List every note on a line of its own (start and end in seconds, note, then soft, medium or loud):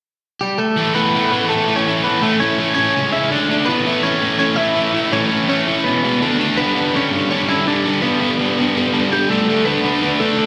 0.41 0.59 G3 medium
0.41 0.58 G4 medium
0.58 0.93 A3 medium
0.58 0.95 A4 medium
0.76 0.93 A2 medium
0.76 0.94 E3 medium
0.76 0.94 A3 medium
0.95 1.12 A2 medium
0.95 1.12 E3 medium
0.95 1.13 A3 medium
0.95 1.46 B3 medium
0.95 1.51 B4 medium
1.13 1.30 A2 medium
1.13 1.31 E3 medium
1.13 1.31 A3 medium
1.32 1.48 A2 medium
1.32 1.49 E3 medium
1.32 1.49 A3 medium
1.49 1.66 A2 medium
1.49 1.67 E3 medium
1.49 1.67 A3 medium
1.49 1.75 A3 medium
1.49 1.75 A4 medium
1.67 1.85 A2 medium
1.67 1.86 E3 medium
1.67 1.86 A3 medium
1.76 2.02 C#4 medium
1.76 2.04 C#5 medium
1.86 2.03 A2 medium
1.86 2.04 E3 medium
1.86 2.04 A3 medium
2.04 2.21 A2 medium
2.04 2.21 E3 medium
2.04 2.21 A3 medium
2.04 2.21 B3 medium
2.04 2.23 B4 medium
2.22 2.40 A2 medium
2.22 2.40 E3 medium
2.22 2.39 A3 medium
2.22 2.41 A3 loud
2.22 2.40 A4 medium
2.40 2.58 A2 medium
2.40 2.58 E3 medium
2.40 2.59 A3 medium
2.40 2.74 C#4 medium
2.40 2.73 C#5 medium
2.59 2.76 A2 medium
2.59 2.76 E3 medium
2.59 2.77 A3 medium
2.74 2.94 A2 medium
2.74 2.94 E3 medium
2.74 2.94 A3 medium
2.74 3.10 C#4 medium
2.74 3.12 C#5 medium
2.95 3.12 C#3 medium
2.95 3.13 G#3 loud
2.95 3.13 C#4 loud
3.12 3.30 C#3 medium
3.12 3.30 G#3 medium
3.12 3.31 C#4 medium
3.12 3.30 E4 medium
3.12 3.30 E5 medium
3.30 3.48 D3 medium
3.30 3.49 A3 medium
3.30 3.56 D4 medium
3.30 3.49 D4 medium
3.30 3.58 D5 medium
3.49 3.66 D3 medium
3.49 3.68 A3 medium
3.49 3.67 D4 medium
3.66 3.84 A2 medium
3.66 3.86 E3 medium
3.66 3.85 A3 loud
3.66 4.01 B3 medium
3.66 4.04 B4 medium
3.85 4.02 A2 medium
3.85 4.03 E3 medium
3.85 4.03 A3 medium
4.03 4.20 A2 medium
4.03 4.21 E3 medium
4.03 4.21 A3 medium
4.03 4.37 C#4 medium
4.03 4.37 C#5 medium
4.21 4.38 A2 medium
4.21 4.39 E3 medium
4.21 4.39 A3 medium
4.39 4.56 A2 loud
4.39 4.57 E3 medium
4.39 4.57 A3 loud
4.39 4.57 C#4 medium
4.39 4.56 C#5 medium
4.56 4.74 A2 medium
4.56 4.75 E3 medium
4.56 4.75 A3 loud
4.56 5.08 E4 medium
4.56 5.13 E5 medium
4.75 4.92 A2 medium
4.75 4.93 E3 medium
4.75 4.93 A3 medium
4.94 5.11 A2 medium
4.94 5.11 E3 medium
4.94 5.11 A3 loud
5.12 5.30 A2 medium
5.12 5.30 E3 loud
5.12 5.31 A3 loud
5.12 5.46 C#4 medium
5.12 5.48 C#5 medium
5.31 5.48 A2 medium
5.31 5.48 E3 medium
5.31 5.48 A3 medium
5.49 5.66 A2 medium
5.49 5.66 E3 medium
5.49 5.67 A3 medium
5.49 5.82 C#4 medium
5.49 5.86 C#5 medium
5.67 5.84 A2 medium
5.67 5.84 E3 medium
5.67 5.84 A3 medium
5.84 6.03 E2 medium
5.84 6.03 B2 loud
5.84 6.03 E3 medium
5.84 6.35 B3 medium
5.84 6.35 B4 medium
6.04 6.20 E2 medium
6.04 6.20 B2 medium
6.04 6.21 E3 medium
6.21 6.37 D3 medium
6.21 6.38 A3 loud
6.21 6.39 D4 medium
6.38 6.56 D3 medium
6.38 6.56 A3 medium
6.38 9.49 D4 medium
6.57 6.75 G2 medium
6.57 6.74 D3 medium
6.57 6.76 G3 loud
6.57 6.92 B3 medium
6.57 6.95 B4 medium
6.75 6.93 G2 medium
6.75 6.93 D3 medium
6.75 6.94 G3 medium
6.94 7.12 G2 medium
6.94 7.12 D3 medium
6.94 7.12 G3 medium
6.94 7.28 C#4 medium
6.94 7.28 C#5 medium
7.12 7.30 G2 medium
7.12 7.30 D3 medium
7.12 7.31 G3 medium
7.31 7.47 G2 medium
7.31 7.47 D3 medium
7.31 7.48 G3 medium
7.31 7.48 C#4 medium
7.31 7.48 C#5 medium
7.48 7.66 G2 medium
7.48 7.67 D3 medium
7.48 7.67 G3 medium
7.48 7.65 E4 medium
7.48 7.67 E5 medium
7.67 7.84 G2 medium
7.67 7.85 D3 medium
7.67 7.85 G3 medium
7.67 8.00 D4 medium
7.67 8.03 D5 medium
7.85 8.01 G2 medium
7.85 8.02 D3 medium
7.85 8.02 G3 medium
8.02 8.20 G2 medium
8.02 8.20 D3 loud
8.02 8.21 G3 loud
8.02 9.07 B3 medium
8.02 9.07 B4 medium
8.21 8.38 G2 medium
8.21 8.38 D3 medium
8.21 8.39 G3 medium
8.39 8.57 G2 medium
8.39 8.57 D3 medium
8.39 8.58 G3 medium
8.58 8.74 G2 medium
8.58 8.75 D3 medium
8.58 8.75 G3 medium
8.76 8.92 G2 medium
8.76 8.92 D3 medium
8.76 8.93 G3 loud
8.93 9.10 G2 medium
8.93 9.11 D3 medium
8.93 9.11 G3 medium
9.11 9.29 G2 medium
9.11 9.30 D3 medium
9.11 9.30 G3 medium
9.11 9.29 G3 medium
9.11 9.30 G4 medium
9.30 9.47 G2 medium
9.30 9.47 D3 medium
9.30 9.47 G3 medium
9.30 9.63 A3 medium
9.30 9.67 A4 medium
9.49 9.66 D3 loud
9.49 9.66 A3 medium
9.49 9.67 D4 loud
9.65 9.84 D3 medium
9.65 9.84 A3 medium
9.65 10.16 B3 medium
9.65 9.85 D4 medium
9.65 10.16 B4 medium
9.84 10.02 D3 medium
9.84 10.02 A3 medium
9.84 10.03 D4 medium
10.02 10.19 D3 medium
10.02 10.20 A3 medium
10.02 10.20 D4 medium
10.20 10.36 D3 medium
10.20 10.37 A3 medium
10.20 10.45 A3 medium
10.20 10.37 D4 medium
10.20 10.45 A4 medium
10.37 10.46 D3 medium
10.37 10.46 A3 medium
10.37 10.46 D4 medium